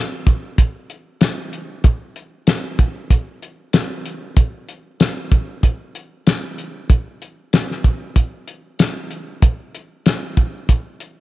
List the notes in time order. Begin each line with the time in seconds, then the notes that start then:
0.27 kick, closed hi-hat
0.58 kick, closed hi-hat
0.90 closed hi-hat
1.21 snare, closed hi-hat, tambourine
1.53 closed hi-hat
1.84 kick, closed hi-hat
2.16 closed hi-hat
2.47 snare, closed hi-hat, tambourine
2.79 kick, closed hi-hat
3.10 kick, closed hi-hat
3.42 closed hi-hat
3.73 snare, closed hi-hat, tambourine
4.06 closed hi-hat
4.37 kick, closed hi-hat
4.69 closed hi-hat
5.00 snare, closed hi-hat, tambourine
5.32 kick, closed hi-hat
5.63 kick, closed hi-hat
5.95 closed hi-hat
6.27 snare, closed hi-hat, tambourine
6.58 closed hi-hat
6.90 kick, closed hi-hat
7.22 closed hi-hat
7.53 snare, closed hi-hat, tambourine
7.71 snare
7.84 kick, closed hi-hat
8.16 kick, closed hi-hat
8.48 closed hi-hat
8.79 snare, closed hi-hat, tambourine
9.11 closed hi-hat
9.42 kick, closed hi-hat
9.75 closed hi-hat
10.06 snare, closed hi-hat, tambourine
10.37 kick, closed hi-hat
10.69 kick, closed hi-hat
11.00 closed hi-hat